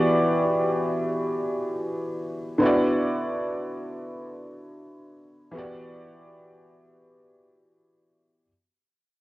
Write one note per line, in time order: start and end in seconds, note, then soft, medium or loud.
0.00 2.57 E3 medium
0.00 2.58 B3 medium
0.00 2.58 F#4 medium
0.00 2.59 G4 medium
0.00 2.60 D5 medium
2.58 5.48 D3 medium
2.58 5.49 B3 medium
2.58 5.50 E4 medium
2.63 5.51 F#4 medium
2.63 5.52 D5 medium
5.51 8.41 E3 medium
5.51 8.42 B3 medium
5.51 8.43 F#4 medium
5.57 8.44 G4 medium
5.57 8.45 D5 medium